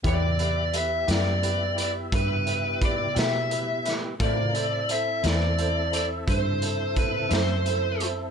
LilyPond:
<<
  \new Staff \with { instrumentName = "Lead electric guitar" } { \time 12/8 \key e \minor \tempo 4. = 58 d''4 e''8 d''4 d''8 b'4 d''8 e''4 r8 | d''4 e''8 d''4 d''8 c''4 b'8 c''4 r8 | }
  \new Staff \with { instrumentName = "Grand piano" } { \time 12/8 \key e \minor <e' g' b'>8 <e' g' b'>8 <e' g' b'>8 <e' g' b'>8 <e' g' b'>8 <e' g' b'>8 <e' g' b'>8 <e' g' b'>8 <e' g' b'>8 <e' g' b'>8 <e' g' b'>8 <e' g' b'>8 | <e' a' c''>8 <e' a' c''>8 <e' a' c''>8 <e' a' b'>8 <e' a' c''>8 <e' a' c''>8 <e' a' c''>8 <e' a' c''>8 <e' a' c''>8 <e' a' c''>8 <e' a' c''>8 <e' a' c''>8 | }
  \new Staff \with { instrumentName = "Tonewheel organ" } { \time 12/8 \key e \minor <b e' g' e''>1. | <cis f' ais' f''>8 <c' e' a' e''>1~ <c' e' a' e''>4. | }
  \new Staff \with { instrumentName = "Clean electric guitar" } { \time 12/8 \key e \minor <e b e' g'>8 r4 <e b e' g'>8 r2 r8 <e b e' g'>8 r4 | <a, e c' e'>8 r4 <a, e c' e'>8 r2 r8 <a, e c' e'>8 r4 | }
  \new Staff \with { instrumentName = "Fingered electric bass" } { \clef bass \time 12/8 \key e \minor e,4. fis,4. g,4. b,4. | a,4. e,4. g,4. fis,4. | }
  \new DrumStaff \with { instrumentName = "Drums" } \drummode { \time 12/8 <hh bd>8 hh8 hh8 <hh sn>8 hh8 hh8 <hh bd>8 hh8 <hh bd>8 <hh sn>8 hh8 <hh sn>8 | <hh bd>8 hh8 hh8 <hh sn>8 hh8 hh8 <hh bd>8 hh8 <hh bd>8 <hh sn>8 hh8 hh8 | }
>>